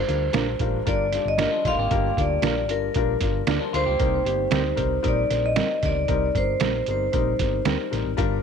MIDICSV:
0, 0, Header, 1, 7, 480
1, 0, Start_track
1, 0, Tempo, 522648
1, 1753, Time_signature, 4, 2, 24, 8
1, 7739, End_track
2, 0, Start_track
2, 0, Title_t, "Vibraphone"
2, 0, Program_c, 0, 11
2, 0, Note_on_c, 0, 72, 87
2, 764, Note_off_c, 0, 72, 0
2, 815, Note_on_c, 0, 74, 85
2, 1174, Note_off_c, 0, 74, 0
2, 1179, Note_on_c, 0, 75, 87
2, 1536, Note_off_c, 0, 75, 0
2, 1539, Note_on_c, 0, 77, 99
2, 2020, Note_off_c, 0, 77, 0
2, 2027, Note_on_c, 0, 74, 87
2, 2486, Note_on_c, 0, 70, 83
2, 2503, Note_off_c, 0, 74, 0
2, 3447, Note_on_c, 0, 72, 91
2, 3467, Note_off_c, 0, 70, 0
2, 4669, Note_on_c, 0, 74, 81
2, 4675, Note_off_c, 0, 72, 0
2, 5012, Note_on_c, 0, 75, 86
2, 5021, Note_off_c, 0, 74, 0
2, 5372, Note_off_c, 0, 75, 0
2, 5378, Note_on_c, 0, 74, 88
2, 5854, Note_on_c, 0, 72, 76
2, 5859, Note_off_c, 0, 74, 0
2, 6290, Note_off_c, 0, 72, 0
2, 6346, Note_on_c, 0, 72, 70
2, 7253, Note_off_c, 0, 72, 0
2, 7739, End_track
3, 0, Start_track
3, 0, Title_t, "Clean electric guitar"
3, 0, Program_c, 1, 27
3, 315, Note_on_c, 1, 58, 69
3, 324, Note_on_c, 1, 62, 73
3, 324, Note_on_c, 1, 65, 73
3, 329, Note_on_c, 1, 70, 78
3, 407, Note_off_c, 1, 58, 0
3, 412, Note_off_c, 1, 62, 0
3, 412, Note_off_c, 1, 65, 0
3, 414, Note_off_c, 1, 70, 0
3, 1266, Note_on_c, 1, 58, 67
3, 1268, Note_on_c, 1, 62, 62
3, 1273, Note_on_c, 1, 65, 71
3, 1282, Note_on_c, 1, 70, 73
3, 1362, Note_off_c, 1, 58, 0
3, 1363, Note_off_c, 1, 62, 0
3, 1366, Note_off_c, 1, 65, 0
3, 1370, Note_off_c, 1, 70, 0
3, 2232, Note_on_c, 1, 58, 75
3, 2239, Note_on_c, 1, 62, 76
3, 2242, Note_on_c, 1, 65, 78
3, 2243, Note_on_c, 1, 70, 77
3, 2325, Note_off_c, 1, 58, 0
3, 2328, Note_off_c, 1, 62, 0
3, 2330, Note_off_c, 1, 65, 0
3, 2330, Note_off_c, 1, 70, 0
3, 3193, Note_on_c, 1, 58, 68
3, 3195, Note_on_c, 1, 62, 75
3, 3202, Note_on_c, 1, 65, 78
3, 3204, Note_on_c, 1, 70, 76
3, 3285, Note_off_c, 1, 58, 0
3, 3286, Note_off_c, 1, 62, 0
3, 3290, Note_off_c, 1, 65, 0
3, 3291, Note_off_c, 1, 70, 0
3, 4142, Note_on_c, 1, 55, 67
3, 4150, Note_on_c, 1, 60, 77
3, 4152, Note_on_c, 1, 63, 78
3, 4157, Note_on_c, 1, 70, 80
3, 4240, Note_off_c, 1, 55, 0
3, 4244, Note_off_c, 1, 60, 0
3, 4244, Note_off_c, 1, 63, 0
3, 4247, Note_off_c, 1, 70, 0
3, 5108, Note_on_c, 1, 55, 78
3, 5110, Note_on_c, 1, 60, 83
3, 5118, Note_on_c, 1, 63, 74
3, 5118, Note_on_c, 1, 70, 78
3, 5202, Note_off_c, 1, 55, 0
3, 5203, Note_off_c, 1, 60, 0
3, 5207, Note_off_c, 1, 63, 0
3, 5207, Note_off_c, 1, 70, 0
3, 6072, Note_on_c, 1, 55, 71
3, 6081, Note_on_c, 1, 60, 71
3, 6082, Note_on_c, 1, 63, 82
3, 6084, Note_on_c, 1, 70, 82
3, 6164, Note_off_c, 1, 55, 0
3, 6169, Note_off_c, 1, 60, 0
3, 6169, Note_off_c, 1, 63, 0
3, 6171, Note_off_c, 1, 70, 0
3, 7035, Note_on_c, 1, 55, 73
3, 7040, Note_on_c, 1, 60, 77
3, 7045, Note_on_c, 1, 63, 75
3, 7047, Note_on_c, 1, 70, 78
3, 7126, Note_off_c, 1, 55, 0
3, 7129, Note_off_c, 1, 60, 0
3, 7131, Note_off_c, 1, 63, 0
3, 7132, Note_off_c, 1, 70, 0
3, 7739, End_track
4, 0, Start_track
4, 0, Title_t, "Upright piano"
4, 0, Program_c, 2, 0
4, 69, Note_on_c, 2, 65, 60
4, 71, Note_on_c, 2, 55, 67
4, 71, Note_on_c, 2, 62, 63
4, 73, Note_on_c, 2, 70, 75
4, 238, Note_off_c, 2, 65, 0
4, 239, Note_off_c, 2, 55, 0
4, 239, Note_off_c, 2, 62, 0
4, 240, Note_off_c, 2, 70, 0
4, 302, Note_on_c, 2, 55, 78
4, 302, Note_on_c, 2, 62, 70
4, 304, Note_on_c, 2, 70, 84
4, 311, Note_on_c, 2, 65, 73
4, 475, Note_off_c, 2, 55, 0
4, 475, Note_off_c, 2, 62, 0
4, 476, Note_off_c, 2, 70, 0
4, 479, Note_off_c, 2, 65, 0
4, 554, Note_on_c, 2, 55, 81
4, 554, Note_on_c, 2, 62, 67
4, 555, Note_on_c, 2, 65, 77
4, 557, Note_on_c, 2, 70, 85
4, 720, Note_off_c, 2, 55, 0
4, 720, Note_off_c, 2, 62, 0
4, 721, Note_off_c, 2, 65, 0
4, 722, Note_off_c, 2, 70, 0
4, 785, Note_on_c, 2, 55, 83
4, 793, Note_on_c, 2, 65, 80
4, 794, Note_on_c, 2, 62, 80
4, 798, Note_on_c, 2, 70, 98
4, 956, Note_off_c, 2, 55, 0
4, 960, Note_off_c, 2, 62, 0
4, 960, Note_off_c, 2, 65, 0
4, 962, Note_off_c, 2, 70, 0
4, 1039, Note_on_c, 2, 55, 66
4, 1043, Note_on_c, 2, 62, 60
4, 1045, Note_on_c, 2, 69, 67
4, 1047, Note_on_c, 2, 65, 62
4, 1203, Note_off_c, 2, 55, 0
4, 1205, Note_off_c, 2, 62, 0
4, 1206, Note_off_c, 2, 69, 0
4, 1207, Note_off_c, 2, 65, 0
4, 1275, Note_on_c, 2, 62, 55
4, 1277, Note_on_c, 2, 55, 67
4, 1279, Note_on_c, 2, 65, 58
4, 1284, Note_on_c, 2, 70, 64
4, 1441, Note_off_c, 2, 62, 0
4, 1442, Note_off_c, 2, 55, 0
4, 1443, Note_off_c, 2, 65, 0
4, 1445, Note_off_c, 2, 70, 0
4, 1519, Note_on_c, 2, 55, 63
4, 1522, Note_on_c, 2, 65, 56
4, 1524, Note_on_c, 2, 70, 70
4, 1526, Note_on_c, 2, 62, 59
4, 1683, Note_off_c, 2, 55, 0
4, 1684, Note_off_c, 2, 65, 0
4, 1685, Note_off_c, 2, 70, 0
4, 1686, Note_off_c, 2, 62, 0
4, 1750, Note_on_c, 2, 62, 76
4, 1750, Note_on_c, 2, 65, 82
4, 1754, Note_on_c, 2, 55, 90
4, 1758, Note_on_c, 2, 70, 103
4, 1918, Note_off_c, 2, 62, 0
4, 1918, Note_off_c, 2, 65, 0
4, 1920, Note_off_c, 2, 55, 0
4, 1922, Note_off_c, 2, 70, 0
4, 1996, Note_on_c, 2, 55, 63
4, 2000, Note_on_c, 2, 70, 74
4, 2002, Note_on_c, 2, 62, 64
4, 2007, Note_on_c, 2, 65, 65
4, 2161, Note_off_c, 2, 55, 0
4, 2163, Note_off_c, 2, 70, 0
4, 2164, Note_off_c, 2, 62, 0
4, 2166, Note_off_c, 2, 65, 0
4, 2222, Note_on_c, 2, 55, 67
4, 2222, Note_on_c, 2, 62, 59
4, 2223, Note_on_c, 2, 65, 60
4, 2225, Note_on_c, 2, 70, 80
4, 2394, Note_off_c, 2, 55, 0
4, 2394, Note_off_c, 2, 62, 0
4, 2395, Note_off_c, 2, 65, 0
4, 2395, Note_off_c, 2, 70, 0
4, 2465, Note_on_c, 2, 55, 68
4, 2475, Note_on_c, 2, 62, 60
4, 2479, Note_on_c, 2, 65, 62
4, 2479, Note_on_c, 2, 70, 72
4, 2635, Note_off_c, 2, 55, 0
4, 2640, Note_off_c, 2, 62, 0
4, 2642, Note_off_c, 2, 65, 0
4, 2642, Note_off_c, 2, 70, 0
4, 2716, Note_on_c, 2, 62, 86
4, 2717, Note_on_c, 2, 55, 83
4, 2719, Note_on_c, 2, 70, 102
4, 2720, Note_on_c, 2, 65, 75
4, 2881, Note_off_c, 2, 55, 0
4, 2881, Note_off_c, 2, 62, 0
4, 2882, Note_off_c, 2, 70, 0
4, 2883, Note_off_c, 2, 65, 0
4, 2956, Note_on_c, 2, 55, 65
4, 2959, Note_on_c, 2, 62, 61
4, 2962, Note_on_c, 2, 65, 64
4, 2962, Note_on_c, 2, 70, 74
4, 3121, Note_off_c, 2, 55, 0
4, 3122, Note_off_c, 2, 62, 0
4, 3123, Note_off_c, 2, 70, 0
4, 3124, Note_off_c, 2, 65, 0
4, 3190, Note_on_c, 2, 65, 69
4, 3194, Note_on_c, 2, 55, 70
4, 3195, Note_on_c, 2, 62, 66
4, 3195, Note_on_c, 2, 70, 83
4, 3358, Note_off_c, 2, 65, 0
4, 3360, Note_off_c, 2, 55, 0
4, 3360, Note_off_c, 2, 62, 0
4, 3360, Note_off_c, 2, 70, 0
4, 3437, Note_on_c, 2, 55, 67
4, 3439, Note_on_c, 2, 62, 60
4, 3441, Note_on_c, 2, 65, 59
4, 3441, Note_on_c, 2, 70, 74
4, 3601, Note_off_c, 2, 55, 0
4, 3602, Note_off_c, 2, 62, 0
4, 3603, Note_off_c, 2, 65, 0
4, 3603, Note_off_c, 2, 70, 0
4, 3666, Note_on_c, 2, 55, 89
4, 3669, Note_on_c, 2, 70, 100
4, 3670, Note_on_c, 2, 63, 81
4, 3671, Note_on_c, 2, 60, 80
4, 3836, Note_off_c, 2, 55, 0
4, 3837, Note_off_c, 2, 70, 0
4, 3838, Note_off_c, 2, 60, 0
4, 3838, Note_off_c, 2, 63, 0
4, 3907, Note_on_c, 2, 60, 65
4, 3914, Note_on_c, 2, 55, 72
4, 3914, Note_on_c, 2, 67, 78
4, 3915, Note_on_c, 2, 63, 62
4, 4076, Note_off_c, 2, 60, 0
4, 4080, Note_off_c, 2, 55, 0
4, 4080, Note_off_c, 2, 63, 0
4, 4080, Note_off_c, 2, 67, 0
4, 4140, Note_on_c, 2, 55, 82
4, 4144, Note_on_c, 2, 67, 89
4, 4146, Note_on_c, 2, 63, 76
4, 4150, Note_on_c, 2, 60, 75
4, 4312, Note_off_c, 2, 55, 0
4, 4315, Note_off_c, 2, 63, 0
4, 4315, Note_off_c, 2, 67, 0
4, 4317, Note_off_c, 2, 60, 0
4, 4370, Note_on_c, 2, 55, 78
4, 4376, Note_on_c, 2, 63, 74
4, 4376, Note_on_c, 2, 70, 91
4, 4377, Note_on_c, 2, 60, 72
4, 4547, Note_off_c, 2, 55, 0
4, 4550, Note_off_c, 2, 63, 0
4, 4550, Note_off_c, 2, 70, 0
4, 4551, Note_off_c, 2, 60, 0
4, 4616, Note_on_c, 2, 63, 83
4, 4618, Note_on_c, 2, 70, 98
4, 4619, Note_on_c, 2, 60, 80
4, 4621, Note_on_c, 2, 55, 94
4, 4790, Note_off_c, 2, 63, 0
4, 4791, Note_off_c, 2, 70, 0
4, 4792, Note_off_c, 2, 60, 0
4, 4793, Note_off_c, 2, 55, 0
4, 4869, Note_on_c, 2, 70, 71
4, 4871, Note_on_c, 2, 55, 62
4, 4871, Note_on_c, 2, 63, 58
4, 4874, Note_on_c, 2, 60, 62
4, 5037, Note_off_c, 2, 70, 0
4, 5038, Note_off_c, 2, 55, 0
4, 5038, Note_off_c, 2, 63, 0
4, 5040, Note_off_c, 2, 60, 0
4, 5112, Note_on_c, 2, 60, 55
4, 5116, Note_on_c, 2, 55, 60
4, 5120, Note_on_c, 2, 70, 72
4, 5122, Note_on_c, 2, 63, 57
4, 5279, Note_off_c, 2, 60, 0
4, 5280, Note_off_c, 2, 55, 0
4, 5283, Note_off_c, 2, 63, 0
4, 5283, Note_off_c, 2, 70, 0
4, 5348, Note_on_c, 2, 60, 58
4, 5351, Note_on_c, 2, 55, 65
4, 5354, Note_on_c, 2, 63, 57
4, 5354, Note_on_c, 2, 70, 73
4, 5516, Note_off_c, 2, 60, 0
4, 5518, Note_off_c, 2, 55, 0
4, 5519, Note_off_c, 2, 63, 0
4, 5520, Note_off_c, 2, 70, 0
4, 5585, Note_on_c, 2, 60, 74
4, 5586, Note_on_c, 2, 70, 96
4, 5587, Note_on_c, 2, 55, 92
4, 5589, Note_on_c, 2, 63, 76
4, 5755, Note_off_c, 2, 60, 0
4, 5756, Note_off_c, 2, 55, 0
4, 5756, Note_off_c, 2, 70, 0
4, 5757, Note_off_c, 2, 63, 0
4, 5832, Note_on_c, 2, 55, 68
4, 5833, Note_on_c, 2, 70, 77
4, 5835, Note_on_c, 2, 60, 58
4, 5839, Note_on_c, 2, 63, 61
4, 5999, Note_off_c, 2, 55, 0
4, 5999, Note_off_c, 2, 70, 0
4, 6000, Note_off_c, 2, 60, 0
4, 6002, Note_off_c, 2, 63, 0
4, 6062, Note_on_c, 2, 55, 68
4, 6068, Note_on_c, 2, 63, 64
4, 6069, Note_on_c, 2, 60, 60
4, 6070, Note_on_c, 2, 70, 74
4, 6234, Note_off_c, 2, 55, 0
4, 6237, Note_off_c, 2, 60, 0
4, 6237, Note_off_c, 2, 63, 0
4, 6237, Note_off_c, 2, 70, 0
4, 6318, Note_on_c, 2, 55, 67
4, 6321, Note_on_c, 2, 60, 65
4, 6321, Note_on_c, 2, 63, 64
4, 6321, Note_on_c, 2, 70, 73
4, 6482, Note_off_c, 2, 55, 0
4, 6483, Note_off_c, 2, 60, 0
4, 6483, Note_off_c, 2, 63, 0
4, 6483, Note_off_c, 2, 70, 0
4, 6542, Note_on_c, 2, 60, 79
4, 6549, Note_on_c, 2, 63, 84
4, 6550, Note_on_c, 2, 55, 84
4, 6552, Note_on_c, 2, 70, 95
4, 6713, Note_off_c, 2, 60, 0
4, 6717, Note_off_c, 2, 63, 0
4, 6718, Note_off_c, 2, 55, 0
4, 6719, Note_off_c, 2, 70, 0
4, 6801, Note_on_c, 2, 55, 66
4, 6803, Note_on_c, 2, 63, 59
4, 6805, Note_on_c, 2, 70, 71
4, 6806, Note_on_c, 2, 60, 60
4, 6963, Note_off_c, 2, 55, 0
4, 6964, Note_off_c, 2, 63, 0
4, 6965, Note_off_c, 2, 70, 0
4, 6966, Note_off_c, 2, 60, 0
4, 7026, Note_on_c, 2, 60, 68
4, 7028, Note_on_c, 2, 55, 74
4, 7029, Note_on_c, 2, 63, 72
4, 7033, Note_on_c, 2, 70, 87
4, 7196, Note_off_c, 2, 60, 0
4, 7197, Note_off_c, 2, 55, 0
4, 7198, Note_off_c, 2, 63, 0
4, 7199, Note_off_c, 2, 70, 0
4, 7263, Note_on_c, 2, 60, 67
4, 7264, Note_on_c, 2, 55, 75
4, 7271, Note_on_c, 2, 70, 85
4, 7273, Note_on_c, 2, 63, 66
4, 7435, Note_off_c, 2, 55, 0
4, 7435, Note_off_c, 2, 60, 0
4, 7438, Note_off_c, 2, 70, 0
4, 7440, Note_off_c, 2, 63, 0
4, 7502, Note_on_c, 2, 55, 102
4, 7508, Note_on_c, 2, 65, 94
4, 7510, Note_on_c, 2, 62, 88
4, 7510, Note_on_c, 2, 70, 112
4, 7674, Note_off_c, 2, 55, 0
4, 7677, Note_off_c, 2, 65, 0
4, 7678, Note_off_c, 2, 62, 0
4, 7678, Note_off_c, 2, 70, 0
4, 7739, End_track
5, 0, Start_track
5, 0, Title_t, "Clean electric guitar"
5, 0, Program_c, 3, 27
5, 1393, Note_on_c, 3, 53, 63
5, 1396, Note_on_c, 3, 62, 62
5, 1507, Note_off_c, 3, 62, 0
5, 1509, Note_off_c, 3, 53, 0
5, 1518, Note_on_c, 3, 65, 69
5, 1524, Note_on_c, 3, 57, 60
5, 1629, Note_off_c, 3, 65, 0
5, 1633, Note_off_c, 3, 57, 0
5, 1641, Note_on_c, 3, 67, 67
5, 1648, Note_on_c, 3, 58, 56
5, 2321, Note_off_c, 3, 67, 0
5, 2324, Note_off_c, 3, 58, 0
5, 3308, Note_on_c, 3, 62, 74
5, 3314, Note_on_c, 3, 53, 61
5, 3424, Note_off_c, 3, 62, 0
5, 3426, Note_on_c, 3, 65, 72
5, 3427, Note_off_c, 3, 53, 0
5, 3431, Note_on_c, 3, 57, 62
5, 3541, Note_off_c, 3, 65, 0
5, 3545, Note_off_c, 3, 57, 0
5, 3545, Note_on_c, 3, 67, 68
5, 3556, Note_on_c, 3, 58, 56
5, 4232, Note_off_c, 3, 67, 0
5, 4237, Note_off_c, 3, 58, 0
5, 7739, End_track
6, 0, Start_track
6, 0, Title_t, "Fingered electric bass"
6, 0, Program_c, 4, 33
6, 80, Note_on_c, 4, 38, 89
6, 254, Note_off_c, 4, 38, 0
6, 317, Note_on_c, 4, 34, 74
6, 492, Note_off_c, 4, 34, 0
6, 551, Note_on_c, 4, 33, 81
6, 728, Note_off_c, 4, 33, 0
6, 800, Note_on_c, 4, 31, 85
6, 1062, Note_off_c, 4, 31, 0
6, 1147, Note_on_c, 4, 31, 78
6, 1326, Note_off_c, 4, 31, 0
6, 1515, Note_on_c, 4, 34, 77
6, 1603, Note_off_c, 4, 34, 0
6, 1632, Note_on_c, 4, 32, 67
6, 1721, Note_off_c, 4, 32, 0
6, 1752, Note_on_c, 4, 31, 97
6, 1929, Note_off_c, 4, 31, 0
6, 1998, Note_on_c, 4, 38, 79
6, 2172, Note_off_c, 4, 38, 0
6, 2221, Note_on_c, 4, 34, 79
6, 2459, Note_off_c, 4, 34, 0
6, 2459, Note_on_c, 4, 31, 68
6, 2641, Note_off_c, 4, 31, 0
6, 2715, Note_on_c, 4, 34, 82
6, 2890, Note_off_c, 4, 34, 0
6, 2955, Note_on_c, 4, 31, 87
6, 3130, Note_off_c, 4, 31, 0
6, 3189, Note_on_c, 4, 38, 80
6, 3278, Note_off_c, 4, 38, 0
6, 3433, Note_on_c, 4, 38, 84
6, 3521, Note_off_c, 4, 38, 0
6, 3553, Note_on_c, 4, 37, 76
6, 3641, Note_off_c, 4, 37, 0
6, 3668, Note_on_c, 4, 36, 97
6, 3846, Note_off_c, 4, 36, 0
6, 3904, Note_on_c, 4, 31, 92
6, 4083, Note_off_c, 4, 31, 0
6, 4147, Note_on_c, 4, 38, 87
6, 4325, Note_off_c, 4, 38, 0
6, 4391, Note_on_c, 4, 36, 90
6, 4567, Note_off_c, 4, 36, 0
6, 4631, Note_on_c, 4, 34, 77
6, 4808, Note_off_c, 4, 34, 0
6, 4875, Note_on_c, 4, 34, 77
6, 5138, Note_off_c, 4, 34, 0
6, 5354, Note_on_c, 4, 38, 86
6, 5441, Note_off_c, 4, 38, 0
6, 5468, Note_on_c, 4, 37, 72
6, 5558, Note_off_c, 4, 37, 0
6, 5598, Note_on_c, 4, 36, 93
6, 5772, Note_off_c, 4, 36, 0
6, 5832, Note_on_c, 4, 31, 79
6, 6009, Note_off_c, 4, 31, 0
6, 6070, Note_on_c, 4, 34, 74
6, 6247, Note_off_c, 4, 34, 0
6, 6314, Note_on_c, 4, 31, 79
6, 6490, Note_off_c, 4, 31, 0
6, 6553, Note_on_c, 4, 34, 80
6, 6729, Note_off_c, 4, 34, 0
6, 6795, Note_on_c, 4, 31, 77
6, 6970, Note_off_c, 4, 31, 0
6, 7027, Note_on_c, 4, 38, 77
6, 7117, Note_off_c, 4, 38, 0
6, 7277, Note_on_c, 4, 33, 85
6, 7363, Note_off_c, 4, 33, 0
6, 7389, Note_on_c, 4, 32, 79
6, 7478, Note_off_c, 4, 32, 0
6, 7516, Note_on_c, 4, 31, 96
6, 7692, Note_off_c, 4, 31, 0
6, 7739, End_track
7, 0, Start_track
7, 0, Title_t, "Drums"
7, 79, Note_on_c, 9, 42, 61
7, 171, Note_off_c, 9, 42, 0
7, 305, Note_on_c, 9, 42, 71
7, 314, Note_on_c, 9, 38, 96
7, 397, Note_off_c, 9, 42, 0
7, 406, Note_off_c, 9, 38, 0
7, 545, Note_on_c, 9, 42, 71
7, 551, Note_on_c, 9, 36, 83
7, 637, Note_off_c, 9, 42, 0
7, 643, Note_off_c, 9, 36, 0
7, 796, Note_on_c, 9, 42, 75
7, 799, Note_on_c, 9, 36, 81
7, 888, Note_off_c, 9, 42, 0
7, 891, Note_off_c, 9, 36, 0
7, 1032, Note_on_c, 9, 38, 33
7, 1033, Note_on_c, 9, 42, 80
7, 1124, Note_off_c, 9, 38, 0
7, 1125, Note_off_c, 9, 42, 0
7, 1272, Note_on_c, 9, 42, 80
7, 1275, Note_on_c, 9, 38, 116
7, 1364, Note_off_c, 9, 42, 0
7, 1366, Note_off_c, 9, 38, 0
7, 1515, Note_on_c, 9, 36, 89
7, 1516, Note_on_c, 9, 42, 66
7, 1517, Note_on_c, 9, 38, 33
7, 1606, Note_off_c, 9, 36, 0
7, 1608, Note_off_c, 9, 42, 0
7, 1609, Note_off_c, 9, 38, 0
7, 1752, Note_on_c, 9, 42, 72
7, 1755, Note_on_c, 9, 36, 104
7, 1844, Note_off_c, 9, 42, 0
7, 1846, Note_off_c, 9, 36, 0
7, 1995, Note_on_c, 9, 36, 72
7, 2003, Note_on_c, 9, 42, 62
7, 2087, Note_off_c, 9, 36, 0
7, 2095, Note_off_c, 9, 42, 0
7, 2225, Note_on_c, 9, 42, 74
7, 2233, Note_on_c, 9, 38, 99
7, 2317, Note_off_c, 9, 42, 0
7, 2325, Note_off_c, 9, 38, 0
7, 2471, Note_on_c, 9, 42, 71
7, 2563, Note_off_c, 9, 42, 0
7, 2704, Note_on_c, 9, 42, 76
7, 2715, Note_on_c, 9, 36, 79
7, 2796, Note_off_c, 9, 42, 0
7, 2807, Note_off_c, 9, 36, 0
7, 2943, Note_on_c, 9, 38, 33
7, 2944, Note_on_c, 9, 42, 75
7, 2950, Note_on_c, 9, 36, 82
7, 3035, Note_off_c, 9, 38, 0
7, 3036, Note_off_c, 9, 42, 0
7, 3042, Note_off_c, 9, 36, 0
7, 3186, Note_on_c, 9, 42, 81
7, 3189, Note_on_c, 9, 38, 109
7, 3278, Note_off_c, 9, 42, 0
7, 3281, Note_off_c, 9, 38, 0
7, 3436, Note_on_c, 9, 42, 70
7, 3437, Note_on_c, 9, 38, 34
7, 3528, Note_off_c, 9, 42, 0
7, 3529, Note_off_c, 9, 38, 0
7, 3669, Note_on_c, 9, 42, 72
7, 3672, Note_on_c, 9, 36, 104
7, 3761, Note_off_c, 9, 42, 0
7, 3763, Note_off_c, 9, 36, 0
7, 3917, Note_on_c, 9, 42, 63
7, 4008, Note_off_c, 9, 42, 0
7, 4141, Note_on_c, 9, 42, 76
7, 4149, Note_on_c, 9, 38, 103
7, 4232, Note_off_c, 9, 42, 0
7, 4241, Note_off_c, 9, 38, 0
7, 4384, Note_on_c, 9, 42, 70
7, 4388, Note_on_c, 9, 36, 86
7, 4476, Note_off_c, 9, 42, 0
7, 4480, Note_off_c, 9, 36, 0
7, 4628, Note_on_c, 9, 42, 76
7, 4635, Note_on_c, 9, 36, 77
7, 4720, Note_off_c, 9, 42, 0
7, 4726, Note_off_c, 9, 36, 0
7, 4872, Note_on_c, 9, 38, 33
7, 4872, Note_on_c, 9, 42, 82
7, 4963, Note_off_c, 9, 38, 0
7, 4964, Note_off_c, 9, 42, 0
7, 5106, Note_on_c, 9, 42, 82
7, 5109, Note_on_c, 9, 38, 113
7, 5198, Note_off_c, 9, 42, 0
7, 5201, Note_off_c, 9, 38, 0
7, 5351, Note_on_c, 9, 42, 69
7, 5352, Note_on_c, 9, 38, 36
7, 5353, Note_on_c, 9, 36, 87
7, 5443, Note_off_c, 9, 42, 0
7, 5444, Note_off_c, 9, 38, 0
7, 5445, Note_off_c, 9, 36, 0
7, 5586, Note_on_c, 9, 42, 69
7, 5592, Note_on_c, 9, 36, 98
7, 5678, Note_off_c, 9, 42, 0
7, 5684, Note_off_c, 9, 36, 0
7, 5831, Note_on_c, 9, 36, 72
7, 5836, Note_on_c, 9, 42, 61
7, 5923, Note_off_c, 9, 36, 0
7, 5927, Note_off_c, 9, 42, 0
7, 6060, Note_on_c, 9, 42, 75
7, 6069, Note_on_c, 9, 38, 99
7, 6152, Note_off_c, 9, 42, 0
7, 6161, Note_off_c, 9, 38, 0
7, 6304, Note_on_c, 9, 42, 72
7, 6396, Note_off_c, 9, 42, 0
7, 6549, Note_on_c, 9, 42, 75
7, 6555, Note_on_c, 9, 36, 84
7, 6641, Note_off_c, 9, 42, 0
7, 6647, Note_off_c, 9, 36, 0
7, 6789, Note_on_c, 9, 38, 32
7, 6790, Note_on_c, 9, 42, 84
7, 6792, Note_on_c, 9, 36, 89
7, 6881, Note_off_c, 9, 38, 0
7, 6882, Note_off_c, 9, 42, 0
7, 6884, Note_off_c, 9, 36, 0
7, 7028, Note_on_c, 9, 42, 77
7, 7030, Note_on_c, 9, 38, 104
7, 7119, Note_off_c, 9, 42, 0
7, 7122, Note_off_c, 9, 38, 0
7, 7281, Note_on_c, 9, 42, 67
7, 7282, Note_on_c, 9, 38, 32
7, 7373, Note_off_c, 9, 42, 0
7, 7374, Note_off_c, 9, 38, 0
7, 7507, Note_on_c, 9, 62, 46
7, 7515, Note_on_c, 9, 36, 102
7, 7516, Note_on_c, 9, 42, 77
7, 7599, Note_off_c, 9, 62, 0
7, 7607, Note_off_c, 9, 36, 0
7, 7608, Note_off_c, 9, 42, 0
7, 7739, End_track
0, 0, End_of_file